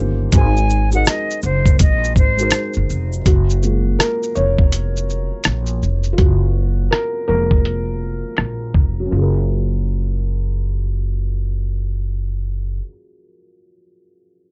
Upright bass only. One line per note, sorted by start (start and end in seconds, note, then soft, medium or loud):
0.00 0.31 G1 medium
0.33 1.02 G#1 loud
1.43 1.77 F#1 loud
1.81 2.14 A#1 medium
2.17 2.51 G#1 medium
2.77 2.89 F#1 medium
2.90 3.24 F1 medium
3.26 3.95 F#1 loud
4.37 5.28 F1 medium
5.46 5.80 A#1 medium
5.83 6.17 F1 medium
6.19 6.88 F#1 loud
7.29 8.21 F1 medium
8.39 8.73 A#1 medium
8.75 9.09 F1 medium
9.12 12.79 F#1 medium